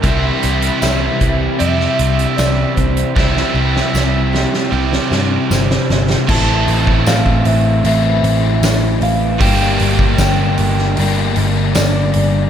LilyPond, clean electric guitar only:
\new Staff \with { instrumentName = "Clean electric guitar" } { \time 4/4 \key c \mixolydian \tempo 4 = 77 r4 e''4 e''4 d''8 c''8~ | c''2. c''4 | a''4 f''8 e''8 e''4. f''8 | g''4 g''4. r8 d''4 | }